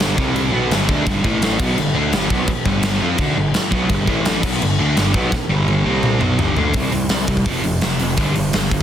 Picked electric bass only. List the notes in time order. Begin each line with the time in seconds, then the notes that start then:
Already playing: G1
0.18 C2
0.53 B1
0.71 G1
0.89 D2
1.07 G1
1.25 A1
1.60 B1
1.77 G1
1.95 D2
2.13 G1
2.30 B1
2.48 muted picked electric bass stroke
2.66 G1
3.01 F2
3.19 D2
3.37 G1
3.72 B1
3.90 G1
4.08 A1
4.44 B1
4.61 G1
4.79 D2
4.97 G1
5.15 B1
5.33 muted picked electric bass stroke
5.50 G1
5.85 C2
6.21 B1
6.39 G1
6.57 D2
6.74 C2
6.92 C2
7.10 C2
7.28 C2
7.46 F1
7.63 F1
7.82 F1
8.00 F1
8.18 G1
8.36 G1
8.54 G1
8.72 G1